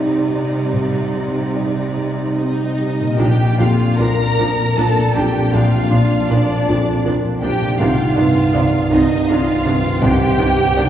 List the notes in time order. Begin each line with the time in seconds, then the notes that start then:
Already playing: C2 C3 G3 C4 D#4 G4 D5
0.31 D#4 G4
0.71 C2 C3
1.13 G3 D#4 G4
1.55 D#4 G4 D5
1.97 D#4 G4
2.37 C4 D#4 G4 D#5
2.79 D#4 G4
3.00 A#2
3.05 A#3
3.09 F4
3.14 D5
3.18 A#1 A#2 F3 D4 G4 G5
3.58 A#1 F2 A#2 F3 D4 F4 F5
3.98 A#1 A#2 F3 D4 F4 A#4 A#5
4.39 A#1 A#2 F3 D4
4.76 A#1 A#2 F3 A#3 D4 F4 A4 A5
5.14 A#1 F2 A#2 F3 D4 G4 G5
5.51 A#1 A#2 F3 D4 F4 F5
5.90 A#1 A#2 F3 D4
6.29 A#1 A#2 F3 D4 F4 A#4 D5
6.67 A#1 F2 A#2 F3 D4
7.05 A#1 A#2 F3 D4 F4 A#4
7.42 A#1 A#2 F3 D4 G4 G5
7.61 C3
7.66 C4
7.71 D#4
7.75 C2 F5 D6
7.80 C2 C3 D#3 C4 D4 F4
8.16 C2 G2 C3 D#3 D4
8.53 C2 C3 D#3 D4 D#4 D5
8.91 C2 C3 D#3 C4 D#4 D#5
9.29 C2 C3 D#3 D4 D#4 F4 D5 F5
9.65 C2 G2 C3 D#3 D4
10.01 C2 C3 D#3 D4 G4 G5
10.39 C2 C3 D#3 C4 D4
10.76 C2 C3 D#3 D4 D#4 D5